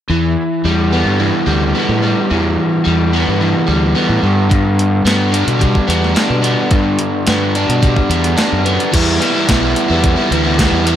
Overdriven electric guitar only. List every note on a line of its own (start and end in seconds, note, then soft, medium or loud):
0.10 1.19 E3 medium
0.65 1.46 G3 medium
0.93 1.74 B3 medium
1.20 2.29 E3 medium
1.47 2.02 G3 medium
1.75 3.13 B3 medium
2.03 2.85 G3 medium
2.31 3.39 E3 medium
2.85 3.67 G3 medium
3.13 3.95 B3 medium
3.40 4.23 E3 medium
3.67 5.59 G3 medium
3.95 5.05 B3 medium
4.23 4.49 G2 medium
4.50 5.88 G2 medium
5.06 5.87 B3 medium
5.32 6.13 D4 medium
5.59 6.98 G3 medium
5.88 6.41 B3 medium
6.15 7.53 D4 medium
6.42 7.26 B3 medium
6.71 8.09 G2 medium
7.27 8.09 B3 medium
7.56 8.36 D4 medium
7.82 8.92 G3 medium
8.10 8.64 B3 medium
8.37 8.92 D4 medium
8.65 8.93 B3 medium
8.92 9.19 E3 medium
8.92 9.20 G3 medium
8.92 9.21 B3 medium
8.92 9.21 E4 medium
9.19 9.47 E3 medium
9.19 9.36 G3 medium
9.19 9.34 B3 medium
9.19 9.33 E4 medium
9.33 9.48 G3 medium
9.33 9.49 B3 medium
9.33 9.49 E4 medium
9.47 9.89 E3 medium
9.47 9.63 G3 medium
9.47 9.62 B3 medium
9.47 9.59 E4 medium
9.61 9.91 G3 medium
9.61 9.90 B3 medium
9.61 9.87 E4 medium
9.88 10.18 G3 medium
9.88 10.17 B3 medium
9.88 10.15 E4 medium
10.16 10.31 G3 medium
10.16 10.32 B3 medium
10.16 10.33 E4 medium
10.30 10.56 E3 medium
10.30 10.46 G3 medium
10.30 10.45 B3 medium
10.30 10.43 E4 medium
10.44 10.58 G3 medium
10.44 10.59 B3 medium
10.44 10.59 E4 medium
10.57 10.83 E3 medium
10.57 10.85 G3 medium
10.57 10.86 B3 loud
10.57 10.86 E4 loud
10.85 10.96 E3 medium
10.85 10.96 G3 medium
10.85 10.96 B3 medium
10.85 10.96 E4 medium